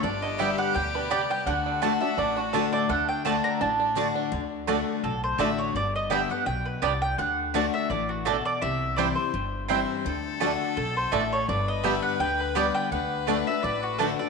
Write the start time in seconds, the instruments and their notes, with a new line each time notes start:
Already playing: five-string banjo D4
0.03 upright bass G1, steel-string acoustic guitar G2, five-string banjo D4, fiddle G4, mandolin D5
0.22 five-string banjo D3, mandolin D#5
0.38 steel-string acoustic guitar D3 G3 B3 G4, five-string banjo G3, mandolin B3 G4 D5 E5 G5
0.58 five-string banjo G4, mandolin F#5
0.75 upright bass D2, steel-string acoustic guitar B2, five-string banjo G3, mandolin G5
0.95 five-string banjo D4, mandolin B4
1.10 steel-string acoustic guitar C3, mandolin B3 G4 D5 G5, five-string banjo B3
1.30 five-string banjo G3, mandolin G5
1.46 upright bass D2, steel-string acoustic guitar D3, five-string banjo D4, fiddle F#4, mandolin F#5
1.66 five-string banjo D3
1.82 steel-string acoustic guitar D3 A3 D4 F#4, mandolin A3 F#4 D5 A5, five-string banjo A3
2.01 five-string banjo D4, steel-string acoustic guitar D4 F#4, mandolin E5
2.17 upright bass A1, steel-string acoustic guitar A2, five-string banjo D4, mandolin D5
2.36 five-string banjo D4, mandolin F#4
2.53 steel-string acoustic guitar D3 A3 D4 F#4, mandolin A3 F#4 A4 D5 A5, five-string banjo D4
2.73 five-string banjo A3, mandolin D5
2.89 upright bass D2, steel-string acoustic guitar D3, five-string banjo A3, fiddle D4, mandolin F#5
3.09 mandolin G5
3.25 steel-string acoustic guitar D3 A3 D4 F#4, five-string banjo A3, mandolin A3 F#4 D5 A5
3.44 five-string banjo D4, mandolin A#5
3.61 upright bass A1, steel-string acoustic guitar A2, five-string banjo D4, mandolin A5
3.80 five-string banjo D4
3.95 steel-string acoustic guitar D3 A3 D4 F#4, mandolin A3 F#4 D5 A5, five-string banjo D4
4.16 five-string banjo D4
4.32 upright bass D2, steel-string acoustic guitar D3
4.67 steel-string acoustic guitar D3 A3 D4 F#4, mandolin A3 F#4 D5 A5, five-string banjo A3 D4
5.04 upright bass B1, steel-string acoustic guitar A2, mandolin A4
5.24 mandolin C5
5.38 upright bass A1, steel-string acoustic guitar D3 A3 D4 F#4, mandolin A3 F#4 D5 E5 A5, five-string banjo A3 D4
5.58 mandolin C#5
5.74 upright bass G1, steel-string acoustic guitar G2, mandolin D5
5.96 mandolin D#5
6.10 steel-string acoustic guitar D3 G3 B3 G4, five-string banjo G3 B3 D4, mandolin B3 G4 D5 E5 G5
6.29 steel-string acoustic guitar B3 G4, mandolin F#5
6.46 upright bass B1, steel-string acoustic guitar B2, mandolin G5
6.66 mandolin B4
6.82 upright bass C2, steel-string acoustic guitar C3, five-string banjo G3 B3 D4, mandolin B3 G4 D5 G5
7.02 mandolin G5
7.18 upright bass D2, steel-string acoustic guitar D3, mandolin F#5
7.54 steel-string acoustic guitar D3 A3 D4 F#4, mandolin A3 F#4 D5 A5, five-string banjo A3 D4
7.74 mandolin E5
7.90 upright bass A1, steel-string acoustic guitar E3, mandolin D5
8.09 mandolin F#4
8.25 steel-string acoustic guitar B2, mandolin A3 F#4 A4 D5 A5, five-string banjo A3 D4
8.45 mandolin D5
8.62 upright bass C2, steel-string acoustic guitar C3, mandolin E5
8.96 steel-string acoustic guitar E3 G3 C4 E4, five-string banjo G3 C4 E4, mandolin C4 E4 C5 D5 G5
9.15 steel-string acoustic guitar C4 E4, mandolin C5
9.34 upright bass G1, steel-string acoustic guitar G2
9.69 steel-string acoustic guitar E3 G3 C4 E4, five-string banjo G3 C4 E4, mandolin C4 E4 C5 G5
10.05 upright bass D2, steel-string acoustic guitar D3, fiddle A4
10.40 steel-string acoustic guitar D3 A3 D4 F#4, mandolin A3 F#4 D5 A5, five-string banjo A3 D4
10.77 upright bass B1, steel-string acoustic guitar B2, mandolin A4
10.97 mandolin C5
11.12 upright bass A1, steel-string acoustic guitar A2, mandolin A3 F#4 D5 E5 A5, five-string banjo A3 D4
11.33 mandolin C#5
11.48 upright bass G1, steel-string acoustic guitar G2, fiddle B4, mandolin D5
11.68 mandolin D#5
11.83 steel-string acoustic guitar D3 G3 B3 G4, five-string banjo G3 B3 D4, mandolin B3 G4 D5 E5 G5
12.03 mandolin F#5
12.20 upright bass D2, steel-string acoustic guitar D3, mandolin G5
12.40 mandolin B4
12.55 steel-string acoustic guitar D3 G3 B3 G4, five-string banjo G3 B3 D4, mandolin B3 G4 D5 G5
12.74 mandolin G5
12.91 upright bass D2, steel-string acoustic guitar D3, fiddle B4, mandolin F#5
13.27 steel-string acoustic guitar D3 A3 D4 F#4, mandolin A3 F#4 D5 A5, five-string banjo A3 D4
13.47 steel-string acoustic guitar D4 F#4, mandolin E5
13.63 upright bass A1, steel-string acoustic guitar A2, mandolin D5
13.83 mandolin F#4
13.98 steel-string acoustic guitar D3 A3 D4 F#4, mandolin A3 F#4 A4 D5 A5, five-string banjo A3 D4
14.19 steel-string acoustic guitar D4 F#4, mandolin D5